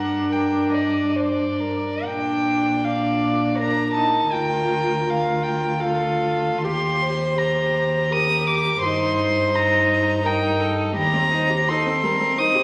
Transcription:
Already playing: cello G2, viola D4, violin A#4 F#5
0.30 violin A#4 G5
0.73 violin D5 D#5
1.09 violin D#5
1.15 violin C5 D5
1.60 violin A#4
2.04 cello A#2, viola D4, violin G5
2.82 viola D4, violin D5 F5
3.57 viola D4, violin A#4 A#5
3.94 viola D#4, violin A5
4.32 cello D2, viola F4, violin G5
5.08 viola F4, violin F5
5.42 violin G5
5.80 viola F4, violin A4 F5
6.62 cello D#2, violin G4 C6, viola G4
7.01 violin C5
7.38 viola G4, violin A#5
8.11 viola G4, violin A#4 D#6
8.47 violin D6
8.82 cello G2, viola D#4, violin C5 C6
9.53 viola D#4, violin A#5
10.23 viola D#4, violin A#4 G5
10.59 violin A4
10.96 cello D#2, viola G3, violin G4 A#5
11.13 viola C4
11.31 viola D#4, violin C5
11.50 viola G4
11.68 viola D#4, violin A4 C6
11.87 viola C4
12.03 viola G3, violin A#4
12.20 viola C4
12.37 viola D#4, violin C5 D#6
12.55 viola G4

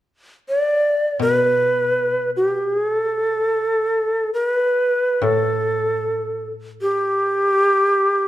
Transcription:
0.49 shakuhachi D5
1.19 koto B2, shakuhachi B4
2.36 shakuhachi G4
2.71 shakuhachi G#4
2.93 shakuhachi A4
4.34 shakuhachi B4
5.22 koto A2, shakuhachi A4
6.82 shakuhachi G4

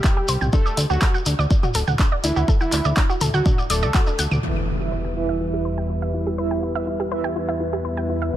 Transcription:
Already playing: analog synth lead G4
0.04 synth arpeggio sound E4, kick, clap, shekere
0.17 synth arpeggio sound G4
0.28 analog synth bass C2, synth arpeggio sound C5, open hi-hat, shekere
0.41 analog synth bass C2, synth arpeggio sound G5, mid tom, shekere
0.53 synth arpeggio sound D4, analog synth lead A4, kick, shekere
0.66 synth arpeggio sound D5, shekere
0.77 analog synth bass D2, synth arpeggio sound D4, open hi-hat, shekere
0.90 analog synth bass D2, synth arpeggio sound F#4, analog synth lead F#4, shekere
1.01 synth arpeggio sound A4, kick, clap, shekere
1.14 synth arpeggio sound F#5, shekere
1.26 analog synth bass D2, synth arpeggio sound D4, open hi-hat, shekere
1.39 analog synth bass D2, synth arpeggio sound D5, shekere
1.50 synth arpeggio sound D4, kick, shekere
1.63 synth arpeggio sound F#4, mid tom, shekere
1.74 analog synth bass D1, synth arpeggio sound A4, open hi-hat, shekere
1.88 analog synth bass D2, synth arpeggio sound F#5, mid tom, shekere
1.99 synth arpeggio sound D4, kick, clap, shekere
2.12 synth arpeggio sound D5
2.24 analog synth bass D2, synth arpeggio sound D4, analog synth lead E4, open hi-hat, shekere
2.36 analog synth bass D2, synth arpeggio sound F#4, shekere
2.48 synth arpeggio sound A4, kick, shekere
2.61 analog synth lead E4, synth arpeggio sound F#5, shekere
2.72 analog synth bass D2, synth arpeggio sound D4, clap, open hi-hat, shekere
2.85 analog synth bass D2, synth arpeggio sound D5, shekere
2.96 synth arpeggio sound D4, kick, clap, shekere
3.09 synth arpeggio sound F#4, shekere
3.21 analog synth bass D2, synth arpeggio sound A4, mid tom, open hi-hat, shekere
3.34 analog synth bass D2, analog synth lead F#4, synth arpeggio sound F#5, shekere
3.46 synth arpeggio sound D4, kick, mid tom, shekere
3.58 synth arpeggio sound D5, shekere
3.70 analog synth bass D1, analog synth lead A4, synth arpeggio sound D5, open hi-hat, shekere
3.82 analog synth bass D2, synth arpeggio sound D5, shekere
3.94 synth arpeggio sound F#4, kick, clap, shekere
4.07 synth arpeggio sound D4, shekere
4.19 analog synth bass D2, synth arpeggio sound F#5, open hi-hat, shekere
4.31 analog synth bass D2, synth arpeggio sound D6, mid tom, shekere
4.43 analog synth bass E2, analog synth pad E3 G3 B3 G4 B4, synth arpeggio sound E4, analog polysynth E4 B4 E5, impact
4.56 synth arpeggio sound E5
4.68 synth arpeggio sound E4
4.80 analog polysynth E4 B4 E5, synth arpeggio sound G4
4.92 synth arpeggio sound B4
5.05 synth arpeggio sound G5
5.16 synth arpeggio sound E4, analog polysynth E4 B4 E5
5.29 synth arpeggio sound E5
5.41 synth arpeggio sound E4
5.53 synth arpeggio sound G4
5.65 synth arpeggio sound B4
5.78 synth arpeggio sound G5
5.90 synth arpeggio sound E4
6.02 synth arpeggio sound E5
6.14 synth arpeggio sound E4
6.27 synth arpeggio sound G4
6.38 analog polysynth E4 B4 E5, synth arpeggio sound B4
6.51 synth arpeggio sound G5
6.63 synth arpeggio sound E4
6.75 analog polysynth E4 B4 E5, synth arpeggio sound E5
6.87 synth arpeggio sound E4
7.00 synth arpeggio sound G4
7.11 analog polysynth E4 B4 E5, synth arpeggio sound B4
7.24 synth arpeggio sound G5
7.36 synth arpeggio sound E4
7.49 synth arpeggio sound E5
7.60 synth arpeggio sound E4
7.73 synth arpeggio sound G4
7.85 synth arpeggio sound B4
7.97 synth arpeggio sound G5
8.09 synth arpeggio sound E4
8.22 synth arpeggio sound E5
8.33 analog synth bass B1, analog synth pad D#3 F#3 F#4, analog polysynth B3 F#4 B4, synth arpeggio sound D#4

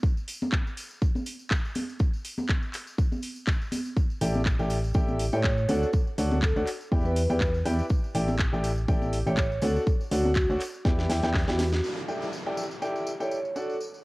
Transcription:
0.03 kick, tambourine
0.17 tambourine
0.28 open hi-hat, tambourine
0.42 tambourine, high conga
0.52 kick, clap, tambourine
0.67 tambourine
0.77 open hi-hat, tambourine
0.91 tambourine
1.02 kick, tambourine
1.15 tambourine, high conga
1.26 open hi-hat, tambourine
1.39 tambourine
1.50 kick, clap, tambourine
1.65 tambourine
1.75 open hi-hat, tambourine, high conga
1.89 tambourine
1.99 kick, tambourine
2.13 tambourine
2.25 open hi-hat, tambourine
2.38 tambourine, high conga
2.49 kick, clap, tambourine
2.62 tambourine
2.73 clap, open hi-hat, tambourine
2.87 tambourine
2.98 kick, tambourine
3.12 tambourine, high conga
3.22 open hi-hat, tambourine
3.36 tambourine
3.47 kick, clap, tambourine
3.61 tambourine
3.72 open hi-hat, tambourine, high conga
3.86 tambourine
3.97 kick, tambourine
4.10 tambourine
4.21 fm bass A1, grand piano E4 G4 A4 D5 G5, open hi-hat, tambourine
4.34 tambourine, high conga
4.46 kick, clap, tambourine
4.59 fm bass A1, grand piano E4 G4 A4 D5 G5, tambourine
4.70 open hi-hat, tambourine
4.84 tambourine
4.94 fm bass A1, grand piano E4 G4 A4 D5 G5, kick, tambourine
5.09 tambourine, high conga
5.20 open hi-hat, tambourine
5.32 fm bass A2, grand piano E4 G4 A4 D5 G5, vibraphone C#5, tambourine
5.44 kick, clap, tambourine
5.58 tambourine
5.69 fm bass D2, grand piano D4 F#4 A4 C#5 F#5, vibraphone A4, open hi-hat, tambourine, high conga
5.83 tambourine
5.93 kick, tambourine
6.07 tambourine
6.18 fm bass D2, grand piano D4 F#4 A4 C#5 F#5, open hi-hat, tambourine
6.31 tambourine, high conga
6.42 vibraphone A4, kick, clap, tambourine
6.56 fm bass D2, grand piano D4 F#4 A4 C#5 F#5, tambourine
6.67 clap, open hi-hat, tambourine
6.81 tambourine
6.92 fm bass E2, grand piano E4 G4 B4 D5 G5, kick, tambourine
7.05 vibraphone B4, tambourine, high conga
7.16 open hi-hat, tambourine
7.30 fm bass E2, grand piano E4 G4 B4 D5 G5, tambourine
7.41 kick, clap, tambourine
7.54 tambourine
7.65 fm bass E2, grand piano E4 G4 B4 D5 G5, open hi-hat, tambourine, high conga
7.79 tambourine
7.89 kick, tambourine
8.04 tambourine
8.15 fm bass A1, grand piano E4 G4 A4 D5 G5, open hi-hat, tambourine
8.28 tambourine, high conga
8.39 kick, clap, tambourine
8.53 fm bass A1, grand piano E4 G4 A4 D5 G5, tambourine
8.64 open hi-hat, tambourine
8.78 tambourine
8.88 fm bass A1, grand piano E4 G4 A4 D5 G5, kick, tambourine
9.02 tambourine, high conga
9.13 open hi-hat, tambourine
9.27 fm bass A1, grand piano E4 G4 A4 D5 G5, vibraphone C#5, tambourine
9.37 kick, clap, tambourine
9.52 tambourine
9.62 fm bass D2, grand piano D4 F#4 A4 C#5 F#5, vibraphone A4, open hi-hat, tambourine, high conga
9.76 tambourine
9.87 kick, tambourine
10.01 tambourine
10.11 fm bass D2, grand piano D4 F#4 A4 C#5 F#5, vibraphone F#4, open hi-hat, tambourine
10.25 tambourine, high conga
10.35 vibraphone F#4, kick, clap, tambourine
10.50 fm bass D2, grand piano D4 F#4 A4 C#5 F#5, tambourine
10.60 clap, open hi-hat, tambourine
10.74 tambourine
10.85 fm bass E2, grand piano E4 G4 B4 D5 G5, kick, snare, tambourine
10.99 snare, tambourine, high conga
11.10 fm bass E2, grand piano E4 G4 B4 D5 G5, snare, open hi-hat, tambourine
11.22 fm bass E2, grand piano E4 G4 B4 D5 G5, snare, tambourine
11.34 kick, snare, clap, tambourine
11.48 fm bass E2, grand piano E4 G4 B4 D5 G5, vibraphone F#4, snare, tambourine
11.59 snare, open hi-hat, tambourine, high conga
11.73 snare, tambourine
11.84 tambourine, downlifter
11.97 tambourine
12.08 grand piano E4 G4 A4 D5 G5, tambourine
12.22 tambourine
12.33 tambourine
12.46 grand piano E4 G4 A4 D5 G5
12.58 tambourine
12.71 tambourine
12.82 grand piano E4 G4 A4 D5 G5, tambourine
12.96 tambourine
13.07 tambourine
13.20 grand piano E4 G4 A4 D5 G5, vibraphone C#5, tambourine
13.31 tambourine
13.45 tambourine
13.56 grand piano D4 F#4 A4 C#5 F#5, vibraphone A4, tambourine
13.70 tambourine
13.81 tambourine
13.94 tambourine

